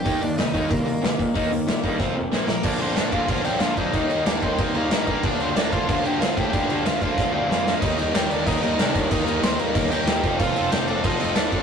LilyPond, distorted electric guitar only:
\new Staff \with { instrumentName = "Distorted electric guitar" } { \time 4/4 \key ees \lydian \tempo 4 = 186 <ees bes ees'>8 <ees bes>8 <ees bes>8 <ees bes ees'>8 <ees bes>8 <ees bes>8 <ees bes>8 <ees bes>8 | <ees bes ees'>8 <ees bes>8 <ees bes>8 <ees bes ees'>8 <f c' f'>8 <f c'>8 <bes, f bes>8 <bes, f>8 | <bes, d f bes d'>8 <bes, d f bes d'>8 <bes, d f bes d'>8 <bes, d f bes d'>8 <bes, d f bes d'>8 <bes, d f bes d'>8 <bes, d f bes d'>8 <bes, d f bes d'>8 | <ees g bes ees'>8 <ees g bes ees'>8 <ees g bes ees'>8 <ees g bes ees'>8 <ees g bes ees'>8 <ees g bes ees'>8 <ees g bes ees'>8 <ees g bes ees'>8 |
<d f bes d'>8 <d f bes d'>8 <d f bes d'>8 <d f bes d'>8 <d f bes d'>8 <d f bes d'>8 <d f bes d'>8 <d f bes d'>8 | <d f bes d'>8 <d f bes d'>8 <d f bes d'>8 <d f bes d'>8 <d f bes d'>8 <d f bes d'>8 <d f bes d'>8 <d f bes d'>8 | <ees g bes ees' bes'>8 <ees g bes ees' bes'>8 <ees g bes ees' bes'>8 <ees g bes ees' bes'>8 <ees g bes ees' bes'>8 <ees g bes ees' bes'>8 <ees g bes ees' bes'>8 <ees g bes ees' bes'>8 | <ees g bes ees' bes'>8 <ees g bes ees' bes'>8 <ees g bes ees' bes'>8 <ees g bes ees' bes'>8 <ees g bes ees' bes'>8 <ees g bes ees' bes'>8 <ees g bes ees' bes'>8 <f c' f' a'>8 |
<f c' f' a'>8 <f c' f' a'>8 <f c' f' a'>8 <f c' f' a'>8 <f c' f' a'>8 <f c' f' a'>8 <f c' f' a'>8 <f c' f' a'>8 | }